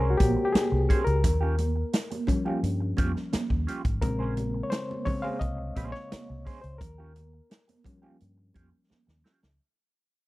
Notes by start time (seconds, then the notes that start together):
Already playing: C2 C#3 G#3 C4 C#4 G#4 A#4 C5 C#5
0.10 F#4
0.18 A#1 G4, muted clean electric guitar stroke, kick, closed hi-hat, muted conga, high conga
0.37 muted clean electric guitar stroke
0.45 G4
0.52 G#4, muted clean electric guitar stroke, muted fingered electric bass stroke, snare, closed hi-hat, muted conga, high conga
0.72 C2, muted clean electric guitar stroke
0.89 C#4 G#4 C5, kick, closed hi-hat, muted conga
1.05 C#2 A#4, muted clean electric guitar stroke, closed hi-hat
1.24 D#2, muted clean electric guitar stroke, kick, closed hi-hat, muted conga, low conga
1.41 C#4 F4 G4
1.58 closed hi-hat, muted conga, high conga
1.76 muted clean electric guitar stroke
1.93 muted clean electric guitar stroke, snare, closed hi-hat
2.11 muted clean electric guitar stroke, closed hi-hat, high conga
2.27 F3 G3 C#4, kick, closed hi-hat, muted conga, low conga
2.45 C#4 F4 G4, high conga
2.63 G2, closed hi-hat
2.80 muted clean electric guitar stroke
2.97 F2 C#4 F4 G4, kick, closed hi-hat, high conga
3.15 muted clean electric guitar stroke, snare
3.33 muted clean electric guitar stroke, muted fingered electric bass stroke, snare, closed hi-hat, muted conga, high conga
3.50 D#2, muted clean electric guitar stroke, kick
3.67 C#4 F4 G4, closed hi-hat
3.85 G#1, muted clean electric guitar stroke, kick, closed hi-hat
4.02 A#1 C#3 G#3 C4 A#4, muted clean electric guitar stroke, kick, closed hi-hat, muted conga, low conga
4.19 C#4 G#4 C5
4.37 muted clean electric guitar stroke, closed hi-hat, muted conga, high conga
4.54 muted clean electric guitar stroke
4.63 C#5
4.70 C5, muted clean electric guitar stroke, snare, closed hi-hat, muted conga
4.89 muted clean electric guitar stroke, high conga
5.05 C#3 G#3 C4 C#5, kick, open hi-hat, muted conga, low conga
5.22 C#4 G#4 C5 F5, high conga
5.39 C2 D#5, kick, closed hi-hat
5.58 muted clean electric guitar stroke
5.76 A#1 C#4 G#4 C5, kick, closed hi-hat, high conga
5.92 C#5, muted clean electric guitar stroke, snare
6.11 muted clean electric guitar stroke, muted fingered electric bass stroke, snare, closed hi-hat, muted conga, high conga
6.28 C2, muted clean electric guitar stroke
6.45 C#4 G#4 C5, kick, open hi-hat, muted conga
6.62 C#2 C5, closed hi-hat
6.78 D#2 A#4, muted clean electric guitar stroke, kick, closed hi-hat, low conga
6.98 C#4 F4 G4
7.16 closed hi-hat, muted conga, high conga
7.33 muted clean electric guitar stroke
7.50 muted clean electric guitar stroke, snare, closed hi-hat
7.68 muted clean electric guitar stroke, closed hi-hat, high conga
7.84 F3 G3 C#4, kick, closed hi-hat, low conga
8.02 C#4 F4 G4, high conga
8.20 G2, closed hi-hat
8.38 muted clean electric guitar stroke
8.54 F2 C#4 F4 G4, kick, closed hi-hat, muted conga, high conga
8.72 muted clean electric guitar stroke
8.90 muted clean electric guitar stroke, muted fingered electric bass stroke, snare, high conga
9.07 D#2, muted clean electric guitar stroke, snare
9.24 C#4 F4 G4, snare
9.42 C#2, muted clean electric guitar stroke, snare